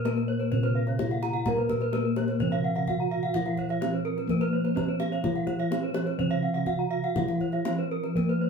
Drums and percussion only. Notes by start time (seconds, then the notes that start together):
0.05 kendang high
0.18 kendang slap
0.40 kendang slap
0.52 kendang low
0.63 kendang slap
0.87 kendang slap
0.99 kendang high, kendang low
1.11 kendang slap
1.23 kendang high
1.34 kendang slap
1.46 kendang high, kendang low
1.57 kendang slap
1.69 kendang high, kendang low
1.81 kendang slap
1.93 kendang high
2.16 kendang high
2.28 kendang slap
2.40 kendang low
2.51 kendang slap
2.75 kendang slap
2.87 kendang low
3.23 kendang slap
3.34 kendang low
3.46 kendang slap
3.57 kendang low
3.69 kendang slap
3.82 kendang high
4.18 kendang slap
4.29 kendang low
4.41 kendang slap
4.65 kendang slap
4.77 kendang high, kendang low
5.00 kendang high
5.13 kendang slap
5.24 kendang high, kendang low
5.35 kendang slap
5.47 kendang high, kendang low
5.59 kendang slap
5.72 kendang high
5.94 kendang high
6.07 kendang slap
6.19 kendang low
6.30 kendang slap
6.55 kendang slap
6.66 kendang low
7.04 kendang slap
7.16 kendang high, kendang low
7.28 kendang slap
7.41 kendang low
7.52 kendang slap
7.65 kendang high
8.04 kendang slap
8.17 kendang low
8.30 kendang slap